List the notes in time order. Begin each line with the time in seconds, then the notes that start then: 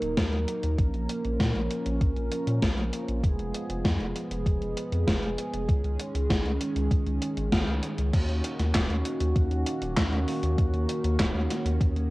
Already playing: F#3 A#3 D#4 A#4
0.02 D#1, closed hi-hat
0.18 D#2, kick, snare, closed hi-hat
0.33 D#2, closed hi-hat
0.48 closed hi-hat
0.63 D#2, closed hi-hat
0.79 A#1 F3 C#4, kick, closed hi-hat
0.94 A#1, closed hi-hat
1.10 closed hi-hat
1.25 A#1, closed hi-hat
1.40 A#2, kick, snare, closed hi-hat
1.55 A#1, closed hi-hat
1.71 closed hi-hat
1.86 A#1, closed hi-hat
2.01 A#1, kick, closed hi-hat
2.16 A#1, closed hi-hat
2.32 closed hi-hat
2.47 A#2, closed hi-hat
2.62 A#1, kick, snare, closed hi-hat
2.78 A#1, closed hi-hat
2.93 closed hi-hat
3.08 A#1, closed hi-hat
3.24 F1 G#3 B3 G#4, kick, closed hi-hat
3.39 F1, closed hi-hat
3.54 closed hi-hat
3.70 F1, closed hi-hat
3.85 F2, kick, snare, closed hi-hat
4.00 F1, closed hi-hat
4.16 closed hi-hat
4.31 F1, closed hi-hat
4.46 F1, kick, closed hi-hat
4.61 F1, closed hi-hat
4.77 closed hi-hat
4.92 F2, closed hi-hat
5.07 F1, kick, snare, closed hi-hat
5.23 F1, closed hi-hat
5.38 closed hi-hat
5.53 F1, closed hi-hat
5.69 C#2 D#3 C#4, kick, closed hi-hat
5.84 C#2, closed hi-hat
5.99 closed hi-hat
6.14 C#2, closed hi-hat
6.30 G#1, kick, snare, closed hi-hat
6.45 C#2, closed hi-hat
6.61 closed hi-hat
6.76 C#2, closed hi-hat
6.91 C#2, kick, closed hi-hat
7.06 C#2, closed hi-hat
7.22 closed hi-hat
7.37 G#1, closed hi-hat
7.52 G#1, kick, snare, closed hi-hat
7.68 C#2, closed hi-hat
7.83 closed hi-hat
7.98 C#2, closed hi-hat
8.13 D#2 D#3 A#3 C#4 F#4, kick, closed hi-hat, crash
8.29 D#2, closed hi-hat
8.44 closed hi-hat
8.59 D#2, snare, closed hi-hat
8.75 D#1, kick, snare, clap, closed hi-hat
8.90 D#2, closed hi-hat
9.05 closed hi-hat
9.21 D#2, closed hi-hat
9.36 D#2, kick, closed hi-hat
9.51 D#2, closed hi-hat
9.67 closed hi-hat
9.82 D#1, closed hi-hat
9.97 D#2, kick, snare, clap, closed hi-hat
10.12 D#2, closed hi-hat
10.28 open hi-hat
10.43 D#2, closed hi-hat
10.58 D#2, kick, closed hi-hat
10.74 D#2, closed hi-hat
10.89 closed hi-hat
11.04 D#2, closed hi-hat
11.20 D#1, kick, snare, clap, closed hi-hat
11.35 D#2, closed hi-hat
11.50 snare, closed hi-hat
11.65 D#2, closed hi-hat
11.81 D#2, kick, closed hi-hat
11.96 D#2, closed hi-hat